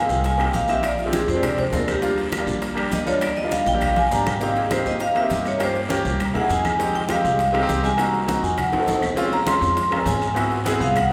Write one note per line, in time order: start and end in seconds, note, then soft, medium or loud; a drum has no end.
0.00 0.28 A#3 medium
0.00 0.28 C4 medium
0.00 0.28 D#4 medium
0.00 0.29 G#4 medium
0.00 0.10 F5 medium
0.09 0.51 C2 loud
0.09 0.25 G5 medium
0.09 short guiro medium
0.09 maracas soft
0.24 0.40 G#5 medium
0.24 high bongo medium
0.24 high conga soft
0.24 high timbale medium
0.24 long guiro medium
0.24 maracas medium
0.37 0.59 A#3 medium
0.37 0.60 C4 medium
0.37 0.60 D#4 medium
0.37 0.60 G4 medium
0.37 0.54 G5 medium
0.37 high bongo soft
0.37 high conga soft
0.37 high timbale medium
0.37 claves medium
0.37 maracas soft
0.53 1.23 A#1 medium
0.53 0.69 F5 medium
0.53 high bongo soft
0.53 low bongo medium
0.53 high conga medium
0.53 short guiro medium
0.53 maracas medium
0.68 0.83 A#3 medium
0.68 0.84 C4 medium
0.68 0.84 D#4 medium
0.68 0.84 G4 medium
0.68 0.84 E5 medium
0.68 high bongo soft
0.68 high timbale medium
0.68 short guiro medium
0.68 maracas soft
0.83 0.99 D5 medium
0.83 high bongo medium
0.83 high conga soft
0.83 high timbale medium
0.83 long guiro medium
0.83 claves medium
0.83 maracas medium
0.98 1.13 F4 medium
0.98 high bongo soft
0.98 high conga soft
0.98 maracas soft
1.05 1.26 G#3 medium
1.05 1.27 C4 medium
1.05 1.27 D4 medium
1.05 1.27 G4 medium
1.13 1.29 G#4 medium
1.13 high bongo medium
1.13 high conga loud
1.13 high timbale medium
1.13 short guiro medium
1.13 maracas medium
1.28 1.70 F2 loud
1.28 1.44 C5 medium
1.28 high conga soft
1.28 short guiro medium
1.28 maracas soft
1.34 1.61 G#3 medium
1.34 1.61 C4 medium
1.34 1.62 D4 medium
1.34 1.62 G4 medium
1.43 1.58 D5 medium
1.43 high bongo medium
1.43 high conga soft
1.43 low conga medium
1.43 high timbale medium
1.43 long guiro medium
1.43 claves medium
1.43 maracas medium
1.58 1.73 C5 medium
1.58 high bongo soft
1.58 high conga soft
1.58 low conga medium
1.58 high timbale medium
1.58 maracas soft
1.71 2.42 D#2 loud
1.71 1.93 G#3 medium
1.71 1.93 C4 medium
1.71 1.94 D4 medium
1.71 1.94 F4 medium
1.71 1.88 A#4 medium
1.71 high bongo soft
1.71 low bongo medium
1.71 low timbale medium
1.71 short guiro medium
1.71 maracas medium
1.88 2.17 G4 medium
1.88 high bongo soft
1.88 high conga medium
1.88 high timbale medium
1.88 short guiro medium
1.88 claves medium
1.88 maracas soft
2.01 2.28 G3 medium
2.01 2.28 A#3 medium
2.01 2.28 D4 medium
2.01 2.29 F4 loud
2.01 high bongo medium
2.01 high conga soft
2.01 long guiro medium
2.01 maracas medium
2.18 high bongo soft
2.18 high conga soft
2.18 high timbale medium
2.18 maracas soft
2.32 high bongo medium
2.32 high conga loud
2.32 high timbale loud
2.32 short guiro medium
2.32 claves medium
2.32 maracas medium
2.38 2.65 G3 medium
2.38 2.65 A#3 medium
2.38 2.66 D4 medium
2.38 2.66 F4 medium
2.47 2.88 A#1 loud
2.47 short guiro medium
2.47 maracas soft
2.62 high bongo medium
2.62 high conga soft
2.62 high timbale medium
2.62 long guiro medium
2.62 maracas medium
2.74 2.97 G3 medium
2.74 2.97 A#3 medium
2.74 2.98 D4 medium
2.74 2.98 G4 medium
2.74 high bongo soft
2.74 high conga soft
2.74 high timbale medium
2.74 claves medium
2.74 maracas soft
2.91 3.61 D#2 medium
2.91 3.07 D#5 medium
2.91 high bongo soft
2.91 low bongo medium
2.91 high conga medium
2.91 low timbale medium
2.91 short guiro medium
2.91 maracas medium
3.05 3.32 G3 medium
3.05 3.33 A#3 medium
3.05 3.33 D4 medium
3.05 3.33 F4 medium
3.05 3.22 C#5 loud
3.05 high bongo soft
3.05 high conga medium
3.05 high timbale medium
3.05 short guiro medium
3.05 maracas soft
3.21 3.37 D5 medium
3.21 high bongo medium
3.21 high conga soft
3.21 high timbale loud
3.21 long guiro medium
3.21 claves medium
3.21 maracas medium
3.37 3.51 D#5 medium
3.37 high bongo soft
3.37 high conga soft
3.37 maracas soft
3.43 3.64 G3 medium
3.43 3.65 A#3 medium
3.43 3.65 D4 medium
3.43 3.65 F4 medium
3.51 3.66 F5 medium
3.51 high bongo medium
3.51 high conga medium
3.51 high timbale medium
3.51 short guiro medium
3.51 maracas medium
3.66 4.08 A#1 loud
3.66 3.81 G5 loud
3.66 high bongo medium
3.66 high conga soft
3.66 short guiro medium
3.66 maracas soft
3.73 3.99 G3 medium
3.73 4.00 A#3 medium
3.73 4.00 D4 medium
3.73 4.00 G4 medium
3.81 3.97 F5 medium
3.81 high conga soft
3.81 low conga medium
3.81 high timbale medium
3.81 long guiro medium
3.81 claves medium
3.81 maracas medium
3.96 4.12 G#5 loud
3.96 low bongo medium
3.96 high conga medium
3.96 high timbale medium
3.96 maracas soft
4.11 4.80 G#1 loud
4.11 4.32 G3 medium
4.11 4.32 A#3 medium
4.11 4.32 D4 medium
4.11 4.33 G4 medium
4.11 4.27 A#5 medium
4.11 high conga medium
4.11 low timbale medium
4.11 short guiro medium
4.11 maracas medium
4.26 4.41 G5 medium
4.26 low bongo medium
4.26 low conga loud
4.26 high timbale medium
4.26 short guiro medium
4.26 claves medium
4.26 maracas soft
4.41 4.62 A#3 medium
4.41 4.62 C4 medium
4.41 4.63 D#4 medium
4.41 4.63 G4 medium
4.41 4.56 F5 medium
4.41 high bongo medium
4.41 high conga soft
4.41 long guiro medium
4.41 maracas medium
4.56 4.71 G#4 medium
4.56 high bongo soft
4.56 high conga soft
4.56 high timbale medium
4.56 maracas soft
4.70 5.02 A#3 medium
4.70 5.02 C4 medium
4.70 5.02 D#4 medium
4.70 5.03 G4 medium
4.70 4.86 C5 medium
4.70 high bongo medium
4.70 high conga loud
4.70 high timbale medium
4.70 short guiro medium
4.70 claves medium
4.70 maracas medium
4.86 5.27 D#2 medium
4.86 5.01 D#5 medium
4.86 short guiro medium
4.86 maracas soft
5.00 5.16 F5 medium
5.00 high bongo medium
5.00 high conga soft
5.00 high timbale medium
5.00 long guiro medium
5.00 maracas medium
5.14 5.20 A#3 medium
5.14 5.20 C4 medium
5.14 5.21 D#4 medium
5.14 5.21 G4 medium
5.14 5.31 E5 medium
5.14 high bongo soft
5.14 high conga soft
5.14 high timbale medium
5.14 claves medium
5.14 maracas soft
5.22 5.49 A#3 medium
5.22 5.49 C4 medium
5.22 5.49 D#4 medium
5.22 5.50 G4 medium
5.30 5.99 G2 medium
5.30 5.47 D#5 medium
5.30 high bongo soft
5.30 low bongo medium
5.30 high conga medium
5.30 low timbale medium
5.30 short guiro medium
5.30 maracas medium
5.45 5.61 C#5 medium
5.45 high bongo soft
5.45 high timbale medium
5.45 short guiro medium
5.45 maracas soft
5.58 5.80 A#3 medium
5.58 5.81 C#4 medium
5.58 5.81 F4 medium
5.58 5.81 G4 medium
5.58 high bongo medium
5.58 high conga soft
5.58 high timbale medium
5.58 long guiro medium
5.58 claves medium
5.58 maracas medium
5.63 5.71 C5 medium
5.75 high bongo soft
5.75 high conga soft
5.75 maracas soft
5.89 6.19 A#3 medium
5.89 6.19 C#4 medium
5.89 6.20 F4 medium
5.89 6.20 G4 loud
5.89 high bongo medium
5.89 high conga loud
5.89 high timbale medium
5.89 short guiro medium
5.89 maracas medium
6.05 6.33 C2 loud
6.05 high conga soft
6.05 short guiro medium
6.05 maracas soft
6.20 high bongo medium
6.20 high conga soft
6.20 low conga medium
6.20 high timbale medium
6.20 long guiro medium
6.20 claves medium
6.20 maracas medium
6.34 6.49 D#2 medium
6.34 6.40 A#3 medium
6.34 6.40 D#4 medium
6.34 6.40 E4 medium
6.34 6.40 G#4 medium
6.34 6.50 F#5 medium
6.34 high bongo soft
6.34 high conga soft
6.34 low conga medium
6.34 high timbale medium
6.34 maracas soft
6.41 6.68 A#3 medium
6.41 6.68 D#4 medium
6.41 6.69 E4 medium
6.41 6.69 G#4 medium
6.49 7.19 F2 loud
6.49 6.92 G#5 medium
6.49 high bongo soft
6.49 low bongo medium
6.49 high conga soft
6.49 short guiro medium
6.49 maracas medium
6.65 high bongo soft
6.65 high conga medium
6.65 high timbale medium
6.65 short guiro medium
6.65 claves medium
6.65 maracas soft
6.79 7.00 G#3 medium
6.79 7.00 C4 medium
6.79 7.01 D#4 medium
6.79 7.01 G4 medium
6.79 high bongo medium
6.79 high conga soft
6.79 long guiro medium
6.79 maracas medium
6.94 7.10 G5 loud
6.94 high bongo soft
6.94 high conga soft
6.94 high timbale medium
6.94 maracas soft
7.09 7.40 G#3 medium
7.09 7.41 C4 medium
7.09 7.41 D#4 medium
7.09 7.41 G4 loud
7.09 7.52 F5 medium
7.09 high bongo medium
7.09 high conga medium
7.09 high timbale medium
7.09 short guiro medium
7.09 claves medium
7.09 maracas medium
7.24 7.66 C2 loud
7.24 short guiro medium
7.24 maracas soft
7.39 high bongo medium
7.39 high conga soft
7.39 high timbale medium
7.39 long guiro medium
7.39 maracas medium
7.52 7.58 G#3 loud
7.52 7.59 C4 medium
7.52 7.59 D#4 medium
7.52 7.59 G4 loud
7.52 high bongo soft
7.52 high conga soft
7.52 high timbale medium
7.52 claves medium
7.52 maracas soft
7.61 7.87 G#3 loud
7.61 7.88 C4 medium
7.61 7.88 D#4 medium
7.61 7.88 G4 loud
7.69 8.38 C2 loud
7.69 high bongo soft
7.69 low bongo medium
7.69 high conga medium
7.69 low timbale medium
7.69 short guiro medium
7.69 maracas medium
7.83 7.99 G#5 loud
7.83 high bongo soft
7.83 high conga medium
7.83 high timbale medium
7.83 short guiro medium
7.83 maracas soft
7.97 8.19 A#3 medium
7.97 8.19 C4 medium
7.97 8.19 D#4 medium
7.97 8.20 F#4 medium
7.97 8.41 A#5 loud
7.97 high bongo medium
7.97 high conga soft
7.97 high timbale medium
7.97 long guiro medium
7.97 claves medium
7.97 maracas medium
8.14 high bongo soft
8.14 high conga soft
8.14 maracas soft
8.27 8.57 A#3 medium
8.27 8.58 C4 medium
8.27 8.58 D#4 medium
8.27 8.58 F#4 medium
8.27 high bongo medium
8.27 high conga loud
8.27 high timbale medium
8.27 short guiro medium
8.27 maracas medium
8.43 8.71 F2 loud
8.43 8.58 G#5 medium
8.43 high conga soft
8.43 short guiro medium
8.43 maracas soft
8.58 8.99 F#5 medium
8.58 high bongo medium
8.58 high conga soft
8.58 low conga medium
8.58 high timbale medium
8.58 long guiro medium
8.58 claves medium
8.58 maracas medium
8.72 8.87 C2 medium
8.72 8.77 A3 medium
8.72 8.77 C4 medium
8.72 8.78 D#4 medium
8.72 8.79 F#4 medium
8.72 high bongo soft
8.72 high conga soft
8.72 high timbale medium
8.72 maracas soft
8.78 9.05 A3 medium
8.78 9.06 C4 medium
8.78 9.06 D#4 medium
8.78 9.06 A4 medium
8.87 9.56 A#1 medium
8.87 high bongo soft
8.87 low bongo medium
8.87 high conga soft
8.87 high timbale medium
8.87 short guiro medium
8.87 maracas medium
9.02 high bongo soft
9.02 high conga medium
9.02 low timbale medium
9.02 short guiro medium
9.02 claves medium
9.02 maracas soft
9.16 9.37 G#3 loud
9.16 9.38 C4 medium
9.16 9.38 C#4 medium
9.16 9.39 F4 loud
9.16 high bongo medium
9.16 high conga soft
9.16 long guiro medium
9.16 maracas medium
9.32 9.47 A#5 loud
9.32 high bongo soft
9.32 high conga soft
9.32 high timbale medium
9.32 maracas soft
9.46 9.78 G#3 medium
9.46 9.78 C4 medium
9.46 9.78 C#4 medium
9.46 9.79 F4 medium
9.46 9.89 C6 loud
9.46 high bongo medium
9.46 high conga loud
9.46 high timbale medium
9.46 short guiro medium
9.46 claves medium
9.46 maracas medium
9.61 10.03 F2 loud
9.61 short guiro medium
9.61 maracas soft
9.77 high bongo medium
9.77 high conga soft
9.77 high timbale medium
9.77 long guiro medium
9.77 maracas medium
9.90 9.95 G#3 medium
9.90 9.96 C4 medium
9.90 9.97 C#4 medium
9.90 9.97 F4 medium
9.90 10.07 A#5 medium
9.90 high bongo soft
9.90 high conga soft
9.90 high timbale loud
9.90 claves medium
9.90 maracas soft
9.97 10.24 G#3 medium
9.97 10.25 C4 medium
9.97 10.25 C#4 medium
9.97 10.25 F4 medium
10.05 10.75 G#2 loud
10.05 10.48 G#5 medium
10.05 high bongo soft
10.05 low bongo medium
10.05 high conga medium
10.05 low timbale medium
10.05 short guiro medium
10.05 maracas medium
10.22 high bongo soft
10.22 high timbale medium
10.22 short guiro medium
10.22 maracas soft
10.34 10.56 B3 medium
10.34 10.56 C4 medium
10.34 10.57 E4 medium
10.34 10.57 F#4 medium
10.34 high bongo medium
10.34 high conga soft
10.34 high timbale medium
10.34 long guiro medium
10.34 claves medium
10.34 maracas medium
10.51 high bongo soft
10.51 high conga soft
10.51 maracas soft
10.65 10.97 B3 loud
10.65 10.97 C4 medium
10.65 10.97 E4 medium
10.65 10.98 G#4 loud
10.65 high bongo medium
10.65 high conga medium
10.65 high timbale medium
10.65 short guiro medium
10.65 maracas medium
10.80 11.13 C2 loud
10.80 10.96 F5 medium
10.80 high conga soft
10.80 short guiro medium
10.80 maracas soft
10.96 11.11 F#5 medium
10.96 high bongo medium
10.96 high conga soft
10.96 low conga medium
10.96 high timbale medium
10.96 long guiro medium
10.96 claves medium
10.96 maracas medium
11.09 11.13 B3 medium